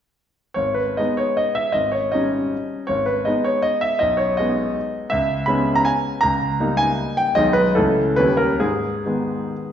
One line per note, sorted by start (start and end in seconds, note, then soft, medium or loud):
0.54 0.97 G#1 soft
0.54 0.76 C#5 medium
0.74 0.97 B4 soft
0.97 1.71 G#3 soft
0.97 1.71 B3 soft
0.97 1.71 D#4 soft
0.97 1.19 D#5 soft
1.17 1.37 C#5 medium
1.37 1.56 D#5 medium
1.55 1.74 E5 medium
1.72 2.11 G#1 soft
1.72 1.92 D#5 medium
1.92 2.12 C#5 medium
2.12 2.85 G3 soft
2.12 2.85 C#4 soft
2.12 2.85 D#4 soft
2.12 2.88 D#5 medium
2.87 3.24 G#1 soft
2.87 3.06 C#5 medium
3.06 3.25 B4 soft
3.25 3.97 G#3 soft
3.25 3.97 B3 soft
3.25 3.97 D#4 soft
3.25 3.45 D#5 medium
3.44 3.64 C#5 medium
3.62 3.82 D#5 medium
3.81 4.00 E5 medium
3.99 4.37 B1 soft
3.99 4.18 D#5 medium
4.17 4.37 C#5 medium
4.37 5.07 G#3 soft
4.37 5.07 B3 soft
4.37 5.07 D#4 soft
4.37 5.10 D#5 medium
5.10 5.47 C#2 soft
5.10 5.47 E5 medium
5.46 6.18 G#3 soft
5.46 6.19 B3 soft
5.46 6.19 C#4 soft
5.46 5.76 B5 medium
5.75 5.85 A#5 medium
5.85 6.22 G#5 medium
6.21 6.58 C#2 soft
6.21 6.78 A#5 medium
6.60 7.34 G3 soft
6.60 7.34 A#3 soft
6.60 7.34 D#4 soft
6.77 7.18 G#5 medium
7.17 7.36 G5 medium
7.35 7.75 B1 soft
7.35 7.72 D#3 soft
7.35 7.72 G#3 soft
7.35 7.72 D#4 soft
7.35 7.55 D#5 medium
7.53 7.75 B4 medium
7.75 8.17 C#2 soft
7.75 8.15 E3 soft
7.75 8.15 A3 soft
7.75 8.15 C#4 soft
7.75 8.18 A4 medium
8.16 8.60 D#2 soft
8.16 8.57 D#3 soft
8.16 8.57 G3 soft
8.16 8.57 C#4 soft
8.16 8.39 B4 medium
8.37 8.60 A#4 medium
8.60 9.05 G#2 soft
8.60 9.72 G#4 medium
9.06 9.72 D#3 soft
9.06 9.72 G#3 soft
9.06 9.72 B3 soft